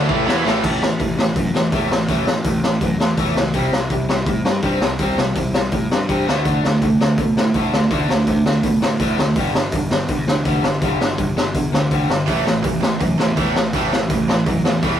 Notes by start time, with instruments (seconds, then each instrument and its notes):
0.09 picked electric bass A1, overdriven electric guitar A2 E3 A3, kick
0.27 picked electric bass E2, overdriven electric guitar E3 B3 E4, snare
0.45 picked electric bass A1, overdriven electric guitar A2 E3 A3, snare
0.64 picked electric bass A1, overdriven electric guitar A2 E3 A3, kick, crash
0.82 picked electric bass A1, overdriven electric guitar A2 E3, snare
1.00 picked electric bass A1, overdriven electric guitar A2 E3, kick, open hi-hat
1.18 picked electric bass A1, overdriven electric guitar A2 E3, snare
1.36 picked electric bass F#2, overdriven electric guitar A2 E3, kick, open hi-hat
1.54 picked electric bass E2, overdriven electric guitar A2 E3, snare
1.72 picked electric bass E2, overdriven electric guitar A2 E3 A3, kick, open hi-hat
1.91 picked electric bass A1, overdriven electric guitar A2 E3, snare
2.08 picked electric bass A1, overdriven electric guitar A2 E3 A3, kick, open hi-hat
2.27 picked electric bass A1, overdriven electric guitar A2 E3, snare
2.44 picked electric bass A1, overdriven electric guitar A2 E3, kick, open hi-hat
2.63 picked electric bass A1, overdriven electric guitar A2 E3, snare
2.81 picked electric bass F#2, overdriven electric guitar A2 E3, kick, open hi-hat
3.00 picked electric bass E2, overdriven electric guitar A2 E3, snare
3.17 picked electric bass E2, overdriven electric guitar A2 E3 A3, kick, open hi-hat
3.36 picked electric bass C#2, overdriven electric guitar A2 E3, snare
3.54 picked electric bass C2, overdriven electric guitar C3 G3 C4, kick, open hi-hat
3.72 picked electric bass C2, overdriven electric guitar C3 G3, snare
3.90 picked electric bass C2, overdriven electric guitar C3 G3, kick, open hi-hat
4.09 picked electric bass C2, overdriven electric guitar C3 G3, snare
4.26 picked electric bass A2, overdriven electric guitar C3 G3, kick, open hi-hat
4.45 picked electric bass G2, overdriven electric guitar C3 G3, snare
4.62 picked electric bass G2, overdriven electric guitar C3 G3 C4, kick, open hi-hat
4.81 picked electric bass C2, overdriven electric guitar C3 G3, snare
4.99 picked electric bass C2, overdriven electric guitar C3 G3 C4, kick, open hi-hat
5.18 picked electric bass C2, overdriven electric guitar C3 G3, snare
5.35 picked electric bass C2, overdriven electric guitar C3 G3, kick, open hi-hat
5.54 picked electric bass C2, overdriven electric guitar C3 G3, snare
5.72 picked electric bass A2, overdriven electric guitar C3 G3, kick, open hi-hat
5.91 picked electric bass G2, overdriven electric guitar C3 G3, snare
6.09 picked electric bass G2, overdriven electric guitar C3 G3 C4, kick, open hi-hat
6.26 picked electric bass D2, overdriven electric guitar D3 A3 D4, snare
6.45 picked electric bass D2, overdriven electric guitar D3 A3 D4, kick, open hi-hat
6.64 picked electric bass D2, overdriven electric guitar D3 A3, snare
6.82 picked electric bass D2, overdriven electric guitar D3 A3, kick, open hi-hat
7.01 picked electric bass D2, overdriven electric guitar D3 A3, snare
7.18 picked electric bass B2, overdriven electric guitar D3 A3, kick, open hi-hat
7.37 picked electric bass A2, overdriven electric guitar D3 A3, snare
7.54 picked electric bass A2, overdriven electric guitar D3 A3 D4, kick, open hi-hat
7.72 picked electric bass D2, overdriven electric guitar D3 A3, snare
7.91 picked electric bass D2, overdriven electric guitar D3 A3 D4, kick, open hi-hat
8.08 picked electric bass D2, overdriven electric guitar D3 A3, snare
8.27 picked electric bass D2, overdriven electric guitar D3 A3, kick, open hi-hat
8.45 picked electric bass D2, overdriven electric guitar D3 A3, snare
8.63 picked electric bass B2, overdriven electric guitar D3 A3, kick, open hi-hat
8.81 picked electric bass A2, overdriven electric guitar D3 A3, snare
9.00 picked electric bass A2, overdriven electric guitar D3 A3 D4, kick, open hi-hat
9.18 picked electric bass D2, overdriven electric guitar D3 A3, snare
9.36 picked electric bass G1, overdriven electric guitar G2 D3 G3, kick, open hi-hat
9.55 picked electric bass G1, overdriven electric guitar G2 D3, snare
9.72 picked electric bass G1, overdriven electric guitar G2 D3, kick, open hi-hat
9.90 picked electric bass G1, overdriven electric guitar G2 D3, snare
10.08 picked electric bass E2, overdriven electric guitar G2 D3, kick, open hi-hat
10.27 picked electric bass D2, overdriven electric guitar G2 D3, snare
10.45 picked electric bass D2, overdriven electric guitar G2 D3 G3, kick, open hi-hat
10.64 picked electric bass G1, overdriven electric guitar G2 D3, snare
10.82 picked electric bass G1, overdriven electric guitar G2 D3 G3, kick, open hi-hat
11.00 picked electric bass G1, overdriven electric guitar G2 D3, snare
11.18 picked electric bass G1, overdriven electric guitar G2 D3, kick, open hi-hat
11.37 picked electric bass G1, overdriven electric guitar G2 D3, snare
11.54 picked electric bass E2, overdriven electric guitar G2 D3, kick, open hi-hat
11.72 picked electric bass D2, overdriven electric guitar G2 D3, snare
11.91 picked electric bass D2, overdriven electric guitar G2 D3 G3, kick, open hi-hat
12.10 picked electric bass G1, overdriven electric guitar G2 D3, snare
12.28 picked electric bass A1, overdriven electric guitar A2 E3 A3, kick, open hi-hat
12.47 picked electric bass A1, overdriven electric guitar A2 E3, snare
12.64 picked electric bass A1, overdriven electric guitar A2 E3, kick, open hi-hat
12.83 picked electric bass A1, overdriven electric guitar A2 E3, snare
13.00 picked electric bass F#2, overdriven electric guitar A2 E3, kick, open hi-hat
13.18 picked electric bass E2, overdriven electric guitar A2 E3, snare
13.37 picked electric bass E2, overdriven electric guitar A2 E3 A3, kick, open hi-hat
13.55 picked electric bass A1, overdriven electric guitar A2 E3, snare
13.73 picked electric bass A1, overdriven electric guitar A2 E3 A3, kick, open hi-hat
13.92 picked electric bass A1, overdriven electric guitar A2 E3, snare
14.10 picked electric bass A1, overdriven electric guitar A2 E3, kick, open hi-hat
14.28 picked electric bass A1, overdriven electric guitar A2 E3, snare
14.46 picked electric bass F#2, overdriven electric guitar A2 E3, kick, open hi-hat
14.64 picked electric bass E2, overdriven electric guitar A2 E3, snare
14.82 picked electric bass E2, overdriven electric guitar A2 E3 A3, kick, open hi-hat